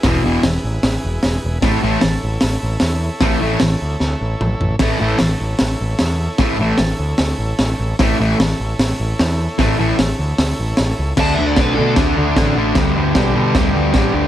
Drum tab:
CC |--------|--------|--------|x-------|
HH |o-o-o-o-|o-o-o-o-|o-o-----|o-o-o-o-|
SD |o-o-o-o-|o-o-o-o-|o-o-o---|o-o-o-o-|
T2 |--------|--------|------o-|--------|
FT |--------|--------|-------o|--------|
BD |o-------|o-------|o-------|o-------|

CC |--------|--------|--------|x-x-x-x-|
HH |o-o-o-o-|o-o-o-o-|o-o-o-o-|--------|
SD |o-o-o-o-|o-o-o-o-|o-o-o-o-|o-o-o-o-|
T2 |--------|--------|--------|--------|
FT |--------|--------|--------|--------|
BD |o-------|o-------|o-------|o-o-o-o-|

CC |x-x-x-x-|
HH |--------|
SD |o-o-o-o-|
T2 |--------|
FT |--------|
BD |o-o-o-o-|